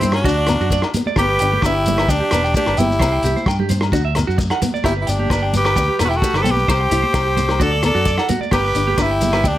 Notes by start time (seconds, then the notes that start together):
Already playing: G2 C4 E4
0.01 C4 C5, closed hi-hat, high conga, low conga, shekere
0.12 D4 F#4, cross-stick, low agogo
0.17 shekere
0.24 D2 D4 F#4, kick, shekere
0.38 D5
0.47 B3, cross-stick, closed hi-hat, low agogo, shekere
0.61 F#2 F#4, shekere
0.70 A3 D5, kick, shekere
0.82 muted clean electric guitar stroke, cross-stick, low agogo
0.94 B3, closed hi-hat, high conga, low conga, shekere
1.06 D5, high conga, shekere
1.16 G1 B3 G4, kick, cross-stick, low agogo, shekere
1.21 B4
1.29 B4
1.39 G1 D4 G5, closed hi-hat
1.52 G4, high conga
1.62 G1 D4 E4 B4, kick, cross-stick, low agogo, shekere
1.66 G4
1.75 G5
1.86 muted steel-string acoustic guitar stroke, closed hi-hat, high conga, low conga, shekere
1.98 B4, cross-stick, low agogo, shekere
2.09 D2 D4 G4 G5, kick, shekere
2.20 G4
2.31 E1 B3 B4, cross-stick, closed hi-hat, low agogo, shekere
2.44 G5, shekere
2.54 A3 D4 G4, kick, shekere
2.66 G1 B4, cross-stick, low agogo
2.77 G1 B3 E4 G4 G5, closed hi-hat, high conga, low conga, shekere
2.91 high conga, shekere
2.99 C2 C4 C5, kick, cross-stick, low agogo, shekere
3.12 G5
3.23 C2 E4 G4, closed hi-hat, shekere
3.36 C5, high conga, shekere
3.46 G2 G5, kick, cross-stick, low agogo, shekere
3.59 G4, low conga
3.69 C4 C5, closed hi-hat, high conga, low conga, shekere
3.81 cross-stick, low agogo, shekere
3.92 D2 D4 F#4, kick, shekere
4.05 E5
4.15 B3, cross-stick, closed hi-hat, low agogo, shekere
4.27 F#2 F#4, shekere
4.38 A3, muted clean electric guitar stroke, kick, shekere
4.50 F#5, cross-stick, low agogo
4.62 B3, muted clean electric guitar stroke, closed hi-hat, high conga, low conga, shekere
4.74 D5, high conga, shekere
4.84 G1 B3 E4 G4, kick, cross-stick, low agogo, shekere
4.97 B4
5.01 E4 G4
5.07 G1 D4 G4 G5, closed hi-hat, shekere
5.19 G4, high conga
5.30 G1 D4 B4, kick, cross-stick, low agogo, shekere
5.43 G5
5.53 B3 G4 B4, closed hi-hat, high conga, low conga, shekere
5.65 B4, cross-stick, low agogo, shekere
5.76 D2 G5, muted steel-string acoustic guitar stroke, kick, shekere
5.89 G4
5.99 E1 B3 A4 B4, cross-stick, closed hi-hat, low agogo, shekere
6.05 E4 F#4 G4
6.11 G5, shekere
6.17 F#4 A4
6.22 A3 G4, kick, shekere
6.34 G1 G4 B4, cross-stick, low agogo
6.40 A4 C5, high conga, low conga
6.44 B1 B3 G5, closed hi-hat, shekere
6.50 G4 B4
6.57 high conga, shekere
6.68 C2 C4 G4 C5, kick, cross-stick, low agogo, shekere
6.81 G5
6.90 C2 E4 G4, closed hi-hat, shekere
7.02 C5, high conga
7.14 C2 E4 G5, kick, cross-stick, low agogo, shekere
7.25 G4
7.36 C4 C5, closed hi-hat, high conga, low conga, shekere
7.49 cross-stick, low agogo, shekere
7.59 D2 D4 F#4 A4 D5, kick, shekere
7.72 D5
7.83 B3 A4 D5, cross-stick, closed hi-hat, low agogo, shekere
7.95 F#2 F#4, shekere
8.05 D5, muted steel-string acoustic guitar stroke, kick, shekere
8.18 F#5, cross-stick, low agogo
8.29 B3 F#4, closed hi-hat, high conga, low conga, shekere
8.40 D5, high conga, shekere
8.51 G1 B3 G4 B4, kick, cross-stick, low agogo, shekere
8.64 B4
8.75 G1 D4, closed hi-hat, shekere
8.87 G4, high conga
8.98 G1 D4 E4 B4, kick, cross-stick, low agogo, shekere
9.02 G4
9.11 G5
9.21 B3, closed hi-hat, high conga, low conga, shekere
9.33 B4, cross-stick, low agogo, shekere
9.44 D2 D4 G4 G5, kick, shekere